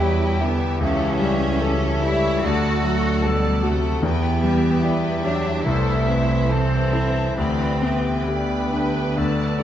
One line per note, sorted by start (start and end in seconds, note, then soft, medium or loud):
0.00 0.77 E2 medium
0.00 0.79 E2 medium
0.00 0.44 F#3 medium
0.00 0.25 G3 soft
0.00 0.42 G3 medium
0.00 0.42 E4 medium
0.00 0.41 E4 soft
0.00 2.39 G4 medium
0.00 0.65 G4 medium
0.00 0.42 B4 soft
0.00 0.82 G5 medium
0.00 0.41 G5 soft
0.41 0.82 D3 medium
0.41 0.81 E3 medium
0.41 0.82 B3 medium
0.41 0.81 E4 medium
0.41 0.81 G4 soft
0.41 0.82 E5 medium
0.80 2.38 C#2 medium
0.80 2.43 C#2 medium
0.80 1.24 E3 medium
0.80 2.01 E3 medium
0.80 2.00 C#4 medium
0.80 1.19 E4 medium
0.80 1.19 A4 soft
0.80 1.19 C#5 medium
0.80 1.61 E5 medium
1.20 1.86 G3 medium
1.20 1.64 G3 medium
1.20 1.62 G4 soft
1.20 1.62 C#5 soft
1.20 1.62 E5 soft
1.61 2.05 F#3 medium
1.61 2.03 E4 soft
1.61 2.27 A4 medium
1.61 2.02 A4 medium
1.61 2.03 C#5 soft
1.61 2.46 E5 medium
2.02 2.45 E3 medium
2.02 2.43 G3 medium
2.02 2.43 E4 medium
2.02 2.43 G4 soft
2.02 2.43 C#5 medium
2.02 2.44 E5 medium
2.43 3.99 D2 medium
2.43 4.00 D2 medium
2.43 2.83 D3 medium
2.43 3.25 A3 medium
2.43 3.24 F#4 medium
2.43 2.81 A4 medium
2.43 3.23 A4 medium
2.43 2.81 D5 soft
2.43 3.77 F#5 medium
2.43 2.82 A5 medium
2.83 3.74 D3 soft
2.83 3.47 F#3 soft
2.83 3.24 F#4 soft
2.83 3.24 A4 soft
2.83 3.24 F#5 medium
3.22 3.64 B2 medium
3.22 3.64 G3 medium
3.22 3.87 A4 medium
3.22 3.63 A4 soft
3.22 3.64 D5 soft
3.22 3.63 A5 soft
3.27 3.77 A4 medium
3.63 4.05 C3 medium
3.63 4.04 A3 medium
3.63 4.03 F#4 medium
3.63 4.03 F#4 soft
3.63 4.04 A4 soft
3.63 4.04 F#5 medium
4.02 5.61 E2 medium
4.02 5.63 E2 medium
4.02 4.80 E3 medium
4.02 5.23 E3 medium
4.02 5.22 B3 medium
4.02 4.40 E4 medium
4.02 5.67 G4 medium
4.02 4.41 B4 soft
4.02 4.85 G5 medium
4.02 4.41 G5 medium
4.43 5.08 G3 medium
4.43 4.83 G4 soft
4.43 4.84 G4 soft
4.43 4.84 E5 medium
4.83 5.23 G3 medium
4.83 5.24 E4 medium
4.83 5.49 G4 medium
4.83 5.25 B4 soft
4.83 5.64 E5 medium
4.83 5.24 G5 soft
5.23 5.66 F#3 medium
5.23 5.54 F#3 medium
5.23 5.65 D4 medium
5.23 5.65 E4 soft
5.23 5.65 G4 soft
5.23 5.66 G4 soft
5.23 5.66 E5 soft
5.64 7.33 C2 medium
5.64 7.38 C2 medium
5.64 7.36 E3 medium
5.64 6.48 A3 medium
5.64 6.49 E4 medium
5.64 6.10 A4 medium
5.64 6.05 A4 soft
5.64 6.03 C5 soft
5.64 6.04 C5 medium
5.64 6.50 E5 soft
6.06 6.76 C4 soft
6.06 6.49 A4 soft
6.06 6.52 B4 medium
6.06 6.49 C5 soft
6.06 6.49 E5 soft
6.49 7.37 E3 medium
6.49 7.35 C4 medium
6.49 7.19 A4 soft
6.49 6.93 A4 soft
6.49 6.92 C5 soft
6.49 6.93 C5 medium
6.49 7.36 C5 medium
6.49 7.37 A5 medium
6.92 7.37 E4 soft
6.92 7.37 A4 soft
6.92 7.37 C5 soft
6.92 7.37 E5 soft
7.36 9.63 D2 soft
7.36 9.13 D2 medium
7.36 9.18 E3 soft
7.36 8.26 E3 medium
7.36 8.17 C4 medium
7.36 9.19 G4 medium
7.36 7.78 B4 soft
7.36 7.79 D5 soft
7.36 9.19 G5 medium
7.36 7.79 B5 soft
7.82 8.54 B3 soft
7.82 8.27 G4 soft
7.82 8.27 B4 soft
7.82 8.27 G5 soft
8.19 8.27 C4 soft
8.26 9.63 D3 medium
8.26 9.63 B3 soft
8.26 9.00 G4 soft
8.26 9.57 B4 medium
8.26 8.73 D5 soft
8.26 8.72 B5 soft
8.73 9.17 D4 soft
8.73 9.18 B4 soft
8.73 9.18 G5 soft
9.17 9.63 D2 medium
9.17 9.63 D3 soft
9.17 9.63 A4 medium
9.17 9.63 D5 soft
9.17 9.58 D5 soft
9.17 9.58 A5 soft
9.24 9.31 D3 soft
9.32 9.40 D3 soft
9.41 9.47 D3 soft
9.58 9.63 D3 soft
9.58 9.63 A3 soft
9.58 9.63 D5 soft
9.58 9.63 F#5 soft